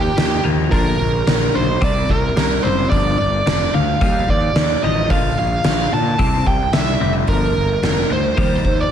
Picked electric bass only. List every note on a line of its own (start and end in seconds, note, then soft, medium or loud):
0.00 0.11 D#2 medium
0.18 0.39 D#2 medium
0.46 0.72 D#2 medium
0.72 0.93 A#1 medium
1.01 1.21 A#1 medium
1.28 1.48 A#1 medium
1.56 1.76 B1 medium
1.82 2.03 C2 medium
2.09 2.30 C2 medium
2.37 2.57 C2 medium
2.65 2.85 F#1 medium
2.92 3.12 G1 medium
3.19 3.40 G1 medium
3.46 3.67 F1 medium
3.74 3.94 D2 medium
4.01 4.22 D#2 medium
4.29 4.49 D#2 medium
4.55 4.76 D#2 medium
4.83 5.10 A1 medium
5.10 5.31 A#1 medium
5.38 5.58 A#1 medium
5.66 5.86 A#1 medium
5.93 6.13 A#2 medium
6.19 6.40 C2 medium
6.46 6.67 C2 medium
6.74 6.95 C2 medium
7.01 7.22 F1 medium
7.28 7.49 G1 medium
7.56 7.77 G1 medium
7.83 8.04 F1 medium
8.11 8.31 D2 medium
8.38 8.58 D#2 medium
8.65 8.85 D#2 medium